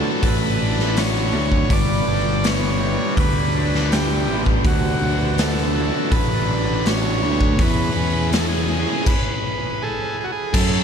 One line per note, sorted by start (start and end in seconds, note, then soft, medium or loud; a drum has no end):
0.00 0.60 D3 medium
0.00 1.68 F#3 medium
0.00 1.33 A3 medium
0.00 0.61 D4 medium
0.00 1.68 D4 medium
0.00 0.96 F#4 medium
0.00 0.26 A4 medium
0.00 7.56 B4 medium
0.23 1.33 A1 medium
0.23 3.17 B4 medium
0.23 1.00 B4 medium
0.23 kick loud
0.23 open hi-hat medium
0.61 2.07 D4 medium
0.79 snare soft
0.96 1.71 F#4 medium
0.96 1.73 C#5 loud
0.96 snare loud
0.96 open hi-hat medium
1.33 1.63 D2 medium
1.33 1.71 A3 medium
1.52 kick medium
1.70 2.00 G1 loud
1.70 3.55 G3 medium
1.70 4.62 G3 medium
1.70 4.62 D4 medium
1.70 2.47 D5 loud
1.70 kick loud
1.70 open hi-hat medium
2.07 2.96 G1 medium
2.07 3.53 D4 medium
2.44 4.28 B3 medium
2.44 3.15 C#5 loud
2.44 snare medium
2.44 open hi-hat medium
2.81 3.90 G4 medium
3.17 4.28 D2 medium
3.17 5.41 B4 medium
3.17 3.94 B4 medium
3.17 kick loud
3.17 open hi-hat medium
3.55 4.65 D4 medium
3.74 snare soft
3.91 4.65 G4 medium
3.91 4.43 G4 medium
3.91 snare loud
3.91 open hi-hat medium
4.28 4.57 A1 medium
4.28 5.38 B3 medium
4.46 kick medium
4.64 4.94 D2 loud
4.64 6.49 D3 medium
4.64 7.57 F#3 medium
4.64 7.57 D4 medium
4.64 5.42 F#4 medium
4.64 kick loud
4.64 open hi-hat medium
5.01 5.90 D2 medium
5.01 6.47 D4 medium
5.38 7.21 A3 medium
5.38 6.15 A4 medium
5.38 snare loud
5.38 open hi-hat soft
5.58 snare soft
5.75 6.84 F#4 medium
6.11 7.23 A1 medium
6.11 7.59 B4 medium
6.11 6.88 B4 medium
6.11 kick loud
6.11 open hi-hat soft
6.48 7.59 D4 medium
6.85 7.59 F#4 medium
6.85 7.62 C#5 medium
6.85 snare medium
6.85 open hi-hat soft
7.22 7.52 D2 medium
7.22 7.59 A3 medium
7.41 kick medium
7.59 7.89 E2 loud
7.59 9.07 E3 medium
7.59 9.06 E3 medium
7.59 9.06 C#4 medium
7.59 9.05 G#4 medium
7.59 8.30 B4 loud
7.59 kick loud
7.59 open hi-hat medium
7.96 8.85 E2 medium
7.96 9.07 C#4 medium
8.33 9.07 G#3 medium
8.33 8.40 G#4 medium
8.33 snare loud
8.33 open hi-hat medium
8.40 8.47 A4 medium
8.49 9.04 G#4 medium
8.70 9.07 G#4 medium
9.06 9.83 B4 medium
9.06 kick loud
9.06 crash medium
9.82 10.19 G#4 medium
9.82 10.16 A4 medium
10.20 10.31 F#4 medium
10.20 10.26 G#4 medium
10.32 10.55 G#4 medium
10.53 10.84 F#2 medium
10.53 10.84 F#2 loud
10.53 10.84 C#3 medium
10.53 10.84 F#3 medium
10.53 10.84 A3 medium
10.53 10.84 C#4 medium
10.53 10.84 A4 medium
10.53 10.84 A4 loud
10.53 kick loud
10.53 crash loud
10.53 crash medium